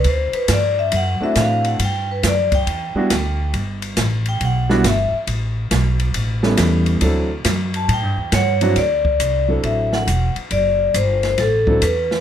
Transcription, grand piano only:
X:1
M:4/4
L:1/8
Q:"Swing" 1/4=138
K:Dmix
V:1 name="Grand piano"
z4 z [A,CDEF]3 | z4 z [G,B,DEF] z2 | z4 z [G,B,DEF] z2 | z4 z [G,B,^CEA]3 |
[F,CDEA] z6 [F,CDEF] | z3 [F,CDEA]3 z2 | z4 z [F,CDEA] z2 |]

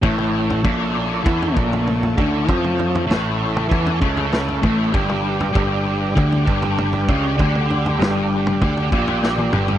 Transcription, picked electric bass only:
X:1
M:4/4
L:1/8
Q:1/4=98
K:none
V:1 name="Picked electric bass" clef=bass
A,,,2 _B,,,2 E,, B,,,2 D,, | F,,2 A,,,2 E,, ^C,,2 A,,, | G,,,2 G,,,2 D,, G,,,2 ^C,, | D,,2 G,,,2 D,, _B,,,2 G,,, |]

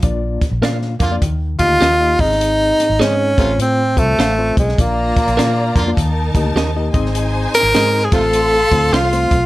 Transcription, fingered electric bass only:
X:1
M:4/4
L:1/16
Q:"Swing" 1/4=101
K:Bb
V:1 name="Fingered electric bass" clef=bass
B,,,2 z B,,, B,,2 F,,2 E,,2 D,,2 E,,2 _A,,,2- | _A,,,2 z A,,, _A,,2 =A,,,2 =A,,2 C,,2 A,,,2 _C,,2 | B,,,2 z B,,, B,,2 F,,2 E,,2 D,,2 E,,2 _A,,,2- | _A,,,2 z A,,, _A,,2 =A,,,4 D,,2 C,,2 _C,,2 |]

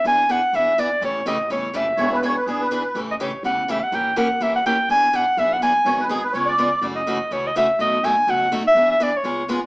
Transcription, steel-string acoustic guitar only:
X:1
M:4/4
L:1/8
Q:"Swing" 1/4=248
K:E
V:1 name="Steel-string acoustic guitar"
[E,B,=DG] z [E,B,DG] z [E,B,DG] z [E,B,DG] z | [C,E,A,C=G] z [C,E,A,CG] z [C,E,A,CG] z [C,E,A,CG] z | [E,B,=DG] z [E,B,DG] z [E,B,DG] z [E,B,DG] z | [C,E,A,C=G] z [C,E,A,CG] z [C,E,A,CG] z [C,E,A,CG] z |
[E,^A,C=G^A] z [E,A,CGA] z [E,A,CGA] z [E,A,CGA] z | [E,B,=DG] z [E,B,DG] z [E,B,DG] z [E,B,DG] z | [D,F,B,DG] z [D,F,B,DG] z [C,G,B,^EG] z [C,G,B,EG] z | [C,E,A,CF] z [C,E,A,CF] z [C,E,A,CF] z [C,E,A,CF] z |
[B,,F,A,DF] z [B,,F,A,DF] z [B,,F,A,DF] z [B,,F,A,DF] z | [E,B,=DG] z [E,B,DG] z [C,G,B,^EG] z [C,G,B,EG] z |]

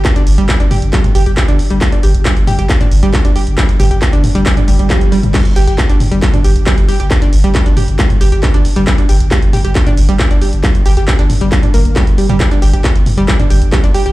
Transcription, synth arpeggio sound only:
X:1
M:4/4
L:1/16
Q:1/4=136
K:Cm
V:1 name="Synth arpeggio sound"
z D z G, z D G z G, z G G z D z G, | z D G z G, z G G z D z G, z D G z | G, z G G z D z G, z D G, G, F, z G, z | G, z G G z D z G, z D G z G, z G G |
z D z G, z D G z G, z G G z D z G, | z D G z G, z G G z D z G, z D G z | G, z G G z D z G, z D B, z G, z G, G, | G, D G G z3 G, z D G z G, D G G |]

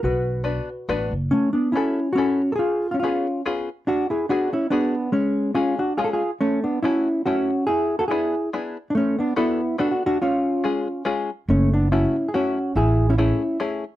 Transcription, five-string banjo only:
X:1
M:3/4
L:1/8
Q:"Swing" 1/4=142
K:Bm
V:1 name="Five-string banjo"
z2 [B,DFB] z [B,DFB] z | [K:F#m] z2 [CEFA] z [CEFA] z | z2 [B,C^EG] z [B,CEG] z | z2 [B,DFG] z [B,DFG] z |
z2 [G,C^EG] z [G,CEG] z | z2 [A,CEF] z [A,CEF] z | z2 [B,DEG] z [B,DEG] z | z2 [B,DFA] z [B,DFA] z |
z2 [G,C^EG] z [G,CEG] z | z2 [A,CEF] z [A,CEF] z | z2 [A,CEG] z [A,CEG] z |]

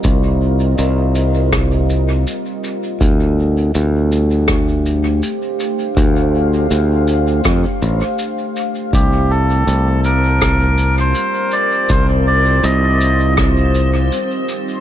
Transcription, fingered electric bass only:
X:1
M:4/4
L:1/8
Q:"Swing 16ths" 1/4=81
K:Cdor
V:1 name="Fingered electric bass" clef=bass
C,,2 C,,4 z2 | D,,2 D,,4 z2 | D,,2 D,,2 F,, A,,, z2 | C,,2 C,,4 z2 |
C,,2 C,,4 z2 |]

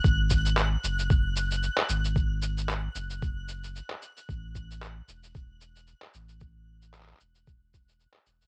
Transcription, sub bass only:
X:1
M:4/4
L:1/8
Q:"Swing 16ths" 1/4=113
K:F#dor
V:1 name="Sub bass" clef=bass
G,,,3 F,,,3 z G,,,- | G,,,3 F,,,3 z2 | A,,,3 E,,,3 z A,,,- | A,,,3 E,,,3 z E,,, |]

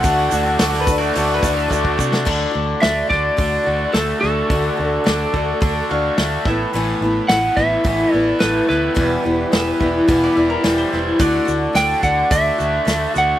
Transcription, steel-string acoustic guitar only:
X:1
M:4/4
L:1/8
Q:1/4=108
K:Ddor
V:1 name="Steel-string acoustic guitar"
[D,A,D^F] [A,DF] [D,A,DF] [A,DF] [D,A,DF] [A,DF] [D,A,DF] [A,DF] | [K:Dmix] [D,A,DF] [A,DF] [D,A,DF] [A,DF] [D,A,DF] [A,DF] [D,A,DF] [A,DF] | [D,A,DF] [A,DF] [D,A,DF] [A,DF] [D,A,DF] [A,DF] [D,A,DF] [A,B,E] | [A,,E,A,B,E] [A,B,E] [E,A,B,E] [A,B,E] [A,,E,A,B,E] [A,B,E] [E,A,B,E] [A,B,E] |
[E,,B,,E,G,B,E] [E,G,B,E] [E,G,B,E] [E,G,B,E] [E,,B,,E,G,B,E] [E,G,B,E] [E,G,B,E] [E,G,B,E] | [D,A,DF] [A,DF] [D,A,DF] [A,DF] [D,A,DF] [A,DF] [D,A,DF] [A,DF] |]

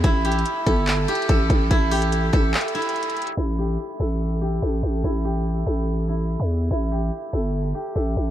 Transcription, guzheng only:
X:1
M:4/4
L:1/8
Q:1/4=144
K:C
V:1 name="Guzheng"
E G2 A z G A2 | E G2 A z E3 | E G2 A z G A2 | E G2 A z E3 |
E G2 A z G A2 |]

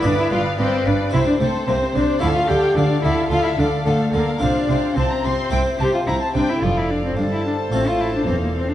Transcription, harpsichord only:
X:1
M:4/4
L:1/8
Q:1/4=110
K:F
V:1 name="Harpsichord"
[=B,D]4 C4 | [A,F]8 | [CF]4 [CE]4 | z4 [A,CF]4 |]
V:2 name="Harpsichord" clef=bass
G,, G,, G,, G,, C, C, C, C, | D, D, D, D, D, D, D, D, | C, C, C, C, C, C, C, C, | F,,2 G,,2 A,,2 E,,2 |]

